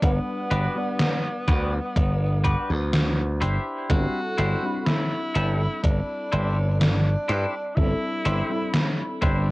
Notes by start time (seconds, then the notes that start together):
0.03 G1 G3 B3 D4 B4 F#5, kick, closed hi-hat
0.51 G1 D4 F#4 G4 B4, closed hi-hat
0.75 G3 B3 D4 D5 F#5
1.00 snare, closed hi-hat
1.48 D2 D4 F#4 G4 B4, kick, closed hi-hat
1.96 G1, kick, closed hi-hat
2.44 D4 F#4 G4 B4, kick, closed hi-hat
2.70 D2
2.93 snare, closed hi-hat
3.41 G1 D4 E4 G4 C5, closed hi-hat
3.89 G1 G3 C4 D4 E4 F#4 A4, kick, closed hi-hat
4.38 G1 D4 E4 G4 C5, closed hi-hat
4.62 G3 C4 D4 E4 B5
4.80 F#4
4.87 E4, snare, closed hi-hat
5.34 G1 D4 E4 G4 A4, closed hi-hat
5.83 G1 D4, kick, closed hi-hat
6.31 G1 D4 E4 G4 C5, closed hi-hat
6.79 D4, snare, closed hi-hat
7.28 G2 D4 E4 G4 C5, closed hi-hat
7.75 G1 G3 C4 D4 E4 A4, kick, closed hi-hat
8.25 G1 D4 E4 G4 C5, closed hi-hat
8.49 G3 C4 D4 E4 B5
8.74 snare, closed hi-hat
9.21 G1 D4 E4 G4 C5, kick, closed hi-hat